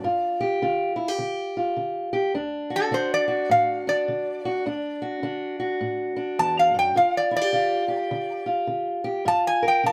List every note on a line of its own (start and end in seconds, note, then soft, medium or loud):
0.00 0.58 G2 medium
0.00 0.41 D5 medium
0.04 0.61 F4 medium
0.41 0.96 G4 medium
0.62 1.15 D3 medium
0.62 1.56 F4 medium
0.96 1.08 E4 medium
1.08 2.12 G4 medium
1.18 1.72 D3 medium
1.57 2.33 F4 medium
1.76 2.30 D3 medium
2.13 2.32 G4 medium
2.34 2.88 D2 medium
2.34 2.91 D4 medium
2.70 3.27 F#4 medium
2.76 2.93 A4 medium
2.91 3.45 D3 medium
2.91 3.87 D4 medium
2.91 3.12 C5 medium
3.14 3.50 D5 medium
3.28 4.43 F#4 medium
3.49 4.03 A2 medium
3.49 3.88 F5 medium
3.87 4.66 D4 medium
3.87 5.00 D5 medium
4.08 4.61 D3 medium
4.45 4.63 F#4 medium
4.66 5.19 D2 medium
4.66 5.23 D4 medium
5.02 5.58 F#4 medium
5.23 5.76 D3 medium
5.23 6.16 D4 medium
5.60 6.93 F#4 medium
5.81 6.34 A2 medium
6.16 6.96 D4 medium
6.39 6.74 E2 medium
6.39 6.57 A5 medium
6.59 6.77 F5 medium
6.74 6.95 F#2 medium
6.79 6.96 G5 medium
6.96 7.49 G2 medium
6.96 7.53 F4 medium
6.96 7.15 F5 medium
7.17 7.35 D5 medium
7.31 7.41 E4 medium
7.36 8.47 D5 medium
7.41 7.87 G4 medium
7.53 8.06 D3 medium
7.53 8.45 F4 medium
7.88 9.03 G4 medium
8.11 8.64 D3 medium
8.46 9.23 F4 medium
8.67 9.21 D3 medium
9.04 9.23 G4 medium
9.25 9.79 G2 medium
9.25 9.83 F4 medium
9.25 9.46 A5 medium
9.47 9.65 G#5 medium
9.62 9.92 A#4 medium
9.68 9.85 G5 medium
9.83 9.92 D3 medium
9.83 9.92 F4 medium
9.83 9.92 A5 medium